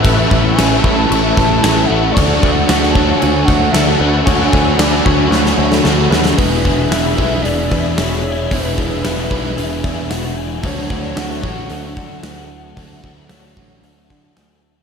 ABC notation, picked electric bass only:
X:1
M:4/4
L:1/8
Q:1/4=113
K:Emix
V:1 name="Picked electric bass" clef=bass
A,,, A,,, A,,, A,,, A,,, A,,, A,,, A,,, | D,, D,, D,,2 D,, D,, D,, D,, | D,, D,, D,, D,, D,, D,, D,, ^D,, | E,,, E,,, E,,, B,,, E,,, E,, E,,,2 |
E,,, E,,, E,,, B,,, E,,, E,, E,,,2 | D,, D,, D,, A,,, D,, D, D,,2 | D,, D,, D,, A,,, D,, D, D,,2 |]